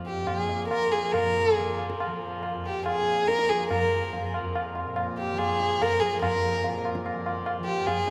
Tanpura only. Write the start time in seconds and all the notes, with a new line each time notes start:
Already playing: F2 A#2 F3
0.23 A#2
0.70 F3
1.12 A#2
1.59 F3
2.07 F3
2.53 F2
3.01 A#2
3.48 F3
3.95 F3
4.40 F2
4.87 A#2
5.33 F3
5.78 F3
6.24 F2
6.69 A#2
7.14 F3
7.59 F3
8.04 F2